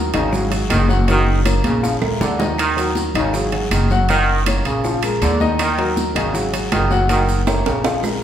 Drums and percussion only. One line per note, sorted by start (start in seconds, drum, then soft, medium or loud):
0.14 high conga soft
0.14 low conga medium
0.14 high timbale medium
0.14 short guiro medium
0.14 claves medium
0.14 maracas soft
0.33 high bongo medium
0.33 high conga soft
0.33 low conga medium
0.33 long guiro medium
0.33 maracas medium
0.51 high conga soft
0.51 high timbale medium
0.51 maracas medium
0.70 high bongo medium
0.70 low bongo medium
0.70 high conga medium
0.70 high timbale medium
0.70 short guiro medium
0.70 claves medium
0.70 maracas medium
0.89 high conga medium
0.89 short guiro medium
0.89 maracas soft
1.08 high bongo medium
1.08 high timbale medium
1.08 long guiro medium
1.08 maracas medium
1.27 high bongo soft
1.27 high conga soft
1.46 high bongo medium
1.46 high conga medium
1.46 high timbale medium
1.46 short guiro medium
1.46 claves medium
1.46 maracas medium
1.64 high conga loud
1.64 high timbale medium
1.64 short guiro medium
1.64 maracas soft
1.84 high bongo medium
1.84 long guiro medium
1.84 maracas medium
2.02 low conga medium
2.02 high timbale medium
2.02 claves medium
2.21 high bongo medium
2.21 low bongo medium
2.21 low conga loud
2.21 high timbale medium
2.21 short guiro medium
2.21 maracas medium
2.40 high bongo soft
2.40 low conga medium
2.40 low timbale medium
2.40 short guiro medium
2.40 maracas soft
2.58 high bongo medium
2.58 high conga soft
2.58 high timbale loud
2.58 long guiro medium
2.58 claves medium
2.58 maracas medium
2.77 high conga soft
2.77 high timbale medium
2.77 maracas medium
2.95 high bongo medium
2.95 high conga medium
2.95 short guiro medium
2.95 maracas medium
3.15 high conga soft
3.15 low conga medium
3.15 high timbale loud
3.15 short guiro medium
3.15 claves medium
3.15 maracas soft
3.33 high bongo medium
3.33 high conga soft
3.33 long guiro medium
3.33 maracas medium
3.52 high conga soft
3.52 high timbale medium
3.71 high bongo medium
3.71 low bongo medium
3.71 high conga medium
3.71 high timbale medium
3.71 short guiro medium
3.71 claves medium
3.71 maracas medium
3.90 high conga medium
3.90 short guiro medium
3.90 maracas soft
4.09 high bongo medium
4.09 high conga soft
4.09 high timbale medium
4.09 long guiro medium
4.09 maracas medium
4.28 high bongo soft
4.28 high conga soft
4.46 high bongo medium
4.46 high conga medium
4.46 high timbale loud
4.46 short guiro medium
4.46 claves medium
4.46 maracas medium
4.65 high bongo soft
4.65 high conga soft
4.65 high timbale medium
4.65 short guiro medium
4.65 maracas soft
4.84 high bongo medium
4.84 high conga soft
4.84 long guiro medium
4.84 maracas medium
5.03 high conga soft
5.03 high timbale medium
5.03 claves medium
5.03 maracas medium
5.22 high bongo medium
5.22 low bongo medium
5.22 high conga medium
5.22 high timbale medium
5.22 short guiro medium
5.22 maracas medium
5.40 high bongo soft
5.40 high conga medium
5.40 short guiro medium
5.40 maracas soft
5.59 high bongo medium
5.59 high conga soft
5.59 high timbale loud
5.59 long guiro medium
5.59 claves medium
5.59 maracas medium
5.78 high conga soft
5.78 high timbale medium
5.97 high bongo medium
5.97 high conga medium
5.97 short guiro medium
5.97 maracas medium
6.15 high conga soft
6.15 low conga medium
6.15 high timbale loud
6.15 short guiro medium
6.15 claves medium
6.15 maracas soft
6.35 high bongo medium
6.35 high conga soft
6.35 long guiro medium
6.35 maracas medium
6.53 high conga soft
6.53 high timbale medium
6.53 maracas medium
6.72 high bongo medium
6.72 low bongo medium
6.72 high conga medium
6.72 high timbale medium
6.72 low timbale medium
6.72 short guiro medium
6.72 claves medium
6.72 maracas medium
6.91 high conga medium
6.91 short guiro medium
6.91 maracas soft
7.09 high bongo medium
7.09 high conga soft
7.09 high timbale medium
7.09 long guiro medium
7.09 maracas medium
7.28 high bongo soft
7.28 high conga soft
7.28 maracas medium
7.47 high bongo medium
7.47 high conga medium
7.47 high timbale loud
7.47 short guiro medium
7.47 claves medium
7.47 maracas medium
7.66 high bongo soft
7.66 high conga soft
7.66 high timbale medium
7.66 short guiro medium
7.66 maracas soft
7.84 high bongo medium
7.84 high conga soft
7.84 high timbale medium
7.84 long guiro medium
7.84 maracas medium
8.03 high bongo medium
8.03 high conga soft
8.03 low timbale medium
8.03 claves medium
8.03 maracas medium